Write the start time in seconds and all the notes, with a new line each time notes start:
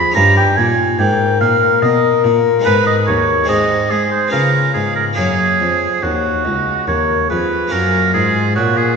Already playing: F2 G#4 A#4 B5
0.12 C#4 D#4 A#4 A#5
0.16 G2 G4
0.37 G5
0.57 A#2 G#5
0.99 G#2 A#4 G5
1.41 A#2 F5
1.82 B2 D#5
2.24 A#2
2.60 G#3 B3 D#4
2.64 G#2 G#4 B4
2.86 D#5
3.07 D#2 C#5
3.44 G#3 C4 D#4
3.48 G#2 F#4 G#4 D#5
3.91 G#3 G#4
4.12 C5
4.28 B3 C#4 F4 A#4
4.33 C#3
4.74 G#2 G#4
4.96 A#4
5.13 A#3 C#4 F#4 G#4
5.17 F#2 C#5
5.60 F2
6.02 D#2 F#4 C#5
6.44 C#2 D#5
6.87 D#2 A#4 C#5
7.28 F2 G#4 B4
7.68 A#3 C#4 F#4
7.72 F#2 A#4
8.13 G#2 F4 G#4
8.55 A#2 F#4 C#5
8.77 F4 G#4